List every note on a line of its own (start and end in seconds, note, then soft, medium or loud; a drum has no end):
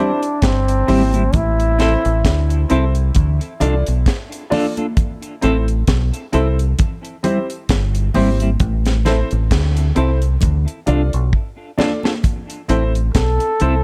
0.00 0.10 G3 medium
0.00 0.11 C4 medium
0.00 0.18 C4 medium
0.00 0.45 D4 loud
0.00 0.11 E4 medium
0.00 0.18 E4 medium
0.00 0.18 G4 medium
0.00 0.18 C5 loud
0.23 closed hi-hat medium
0.42 0.82 G1 medium
0.42 1.37 C4 loud
0.42 kick loud
0.42 snare loud
0.42 closed hi-hat medium
0.68 closed hi-hat medium
0.87 1.28 G#1 medium
0.87 1.01 G3 medium
0.87 1.08 C4 medium
0.87 1.02 C4 medium
0.87 1.08 E4 medium
0.87 1.02 E4 medium
0.87 1.09 G4 medium
0.87 1.09 C5 loud
0.87 open hi-hat medium
0.87 high conga medium
0.87 low conga medium
1.13 1.23 G3 medium
1.13 1.22 C4 medium
1.13 1.22 E4 medium
1.13 closed hi-hat medium
1.13 high conga medium
1.33 1.95 A1 medium
1.33 2.71 E4 loud
1.33 kick loud
1.33 closed hi-hat medium
1.33 low conga medium
1.60 closed hi-hat medium
1.78 1.99 C4 medium
1.78 1.93 C4 medium
1.78 2.00 E4 medium
1.78 1.93 E4 medium
1.78 2.00 A4 medium
1.78 1.93 A4 medium
1.78 2.00 C5 loud
1.78 snare medium
1.78 closed hi-hat medium
1.78 low conga medium
2.05 2.22 A1 medium
2.05 closed hi-hat medium
2.25 2.64 D2 medium
2.25 kick loud
2.25 snare loud
2.25 closed hi-hat loud
2.50 closed hi-hat medium
2.69 3.10 C2 medium
2.69 2.90 C4 medium
2.69 2.83 C4 medium
2.69 2.91 E4 medium
2.69 2.84 E4 loud
2.69 2.91 A4 medium
2.69 2.84 A4 medium
2.69 2.91 C5 loud
2.69 closed hi-hat medium
2.95 closed hi-hat soft
3.15 3.38 D2 loud
3.15 kick loud
3.15 closed hi-hat medium
3.15 low conga medium
3.41 closed hi-hat medium
3.60 3.83 C2 loud
3.60 3.81 D4 medium
3.60 3.74 D4 medium
3.60 3.81 F4 medium
3.60 3.75 F4 medium
3.60 3.82 A4 medium
3.60 3.75 A4 medium
3.60 3.82 D5 loud
3.60 closed hi-hat medium
3.60 low conga medium
3.87 4.04 B1 medium
3.87 closed hi-hat medium
4.06 kick loud
4.06 snare loud
4.06 closed hi-hat medium
4.32 closed hi-hat medium
4.50 4.72 D4 medium
4.50 4.65 D4 medium
4.50 4.72 F4 medium
4.50 4.66 F4 loud
4.50 4.72 A4 medium
4.50 4.66 A4 loud
4.50 4.72 D5 loud
4.50 open hi-hat medium
4.50 high conga medium
4.50 low conga medium
4.77 4.86 D4 medium
4.77 4.86 F4 medium
4.77 4.85 A4 medium
4.77 closed hi-hat medium
4.77 high conga medium
4.97 kick loud
4.97 closed hi-hat medium
4.97 low conga medium
5.22 closed hi-hat medium
5.41 5.82 A1 loud
5.41 5.63 C4 medium
5.41 5.56 C4 medium
5.41 5.63 E4 medium
5.41 5.56 E4 medium
5.41 5.63 A4 medium
5.41 5.57 A4 loud
5.41 5.63 C5 loud
5.41 closed hi-hat medium
5.41 low conga medium
5.68 closed hi-hat soft
5.87 6.10 B1 medium
5.87 kick loud
5.87 snare loud
5.87 closed hi-hat loud
6.14 closed hi-hat medium
6.32 6.73 C2 loud
6.32 6.54 C4 medium
6.32 6.46 C4 medium
6.32 6.54 E4 medium
6.32 6.47 E4 medium
6.32 6.54 A4 medium
6.32 6.47 A4 loud
6.32 6.55 C5 loud
6.32 closed hi-hat medium
6.59 closed hi-hat soft
6.79 kick loud
6.79 closed hi-hat loud
6.79 low conga medium
7.05 closed hi-hat soft
7.23 7.37 G3 medium
7.23 7.45 C4 medium
7.23 7.37 C4 medium
7.23 7.45 E4 medium
7.23 7.38 E4 medium
7.23 7.45 G4 medium
7.23 7.45 C5 loud
7.23 closed hi-hat medium
7.23 low conga medium
7.50 closed hi-hat medium
7.69 8.09 G1 medium
7.69 kick loud
7.69 snare loud
7.69 closed hi-hat medium
7.95 closed hi-hat medium
8.14 8.55 G#1 medium
8.14 8.29 G3 medium
8.14 8.36 C4 medium
8.14 8.29 C4 medium
8.14 8.36 E4 medium
8.14 8.29 E4 medium
8.14 8.36 G4 medium
8.14 8.36 C5 loud
8.14 open hi-hat medium
8.14 high conga medium
8.14 low conga medium
8.40 8.50 G3 soft
8.40 8.50 C4 soft
8.40 8.49 E4 medium
8.40 closed hi-hat medium
8.40 high conga medium
8.60 9.22 A1 medium
8.60 kick loud
8.60 closed hi-hat medium
8.60 low conga medium
8.86 snare medium
8.86 closed hi-hat medium
9.05 9.27 C4 loud
9.05 9.19 C4 medium
9.05 9.27 E4 medium
9.05 9.19 E4 medium
9.05 9.27 A4 medium
9.05 9.20 A4 medium
9.05 9.27 C5 loud
9.05 snare medium
9.05 closed hi-hat medium
9.05 low conga medium
9.31 9.49 A1 medium
9.31 closed hi-hat medium
9.51 9.91 D2 medium
9.51 kick loud
9.51 snare loud
9.51 closed hi-hat medium
9.77 closed hi-hat medium
9.95 10.36 C2 medium
9.95 10.17 C4 medium
9.95 10.10 C4 medium
9.95 10.17 E4 medium
9.95 10.10 E4 medium
9.95 10.17 A4 medium
9.95 10.10 A4 medium
9.95 10.18 C5 medium
9.95 closed hi-hat medium
10.22 closed hi-hat soft
10.41 10.65 D2 loud
10.41 kick loud
10.41 closed hi-hat loud
10.41 low conga medium
10.68 closed hi-hat medium
10.86 11.10 C2 medium
10.86 11.08 D4 medium
10.86 11.01 D4 medium
10.86 11.08 F4 medium
10.86 11.01 F4 medium
10.86 11.09 A4 medium
10.86 11.01 A4 medium
10.86 11.09 D5 medium
10.86 closed hi-hat medium
10.86 low conga medium
11.13 11.31 B1 medium
11.13 closed hi-hat medium
11.33 kick loud
11.78 11.99 D4 loud
11.78 11.91 D4 medium
11.78 11.99 F4 medium
11.78 11.92 F4 medium
11.78 12.00 A4 medium
11.78 11.92 A4 medium
11.78 12.00 D5 loud
11.78 snare loud
11.78 high conga medium
11.78 low conga medium
12.03 12.13 D4 soft
12.03 12.13 F4 medium
12.03 12.12 A4 medium
12.03 snare loud
12.03 high conga medium
12.23 kick loud
12.23 closed hi-hat loud
12.23 low conga medium
12.50 closed hi-hat medium
12.68 13.09 A1 medium
12.68 12.90 C4 medium
12.68 12.82 C4 medium
12.68 12.90 E4 medium
12.68 12.83 E4 medium
12.68 12.90 A4 medium
12.68 12.83 A4 medium
12.68 12.91 C5 loud
12.68 closed hi-hat medium
12.68 low conga medium
12.95 closed hi-hat medium
13.15 13.37 B1 medium
13.15 13.84 A4 loud
13.15 kick loud
13.15 snare loud
13.15 closed hi-hat loud
13.40 closed hi-hat medium
13.60 13.84 C2 loud
13.60 13.81 C4 medium
13.60 13.74 C4 medium
13.60 13.81 E4 medium
13.60 13.74 E4 medium
13.60 13.82 A4 medium
13.60 13.74 A4 medium
13.60 13.82 C5 loud
13.60 closed hi-hat medium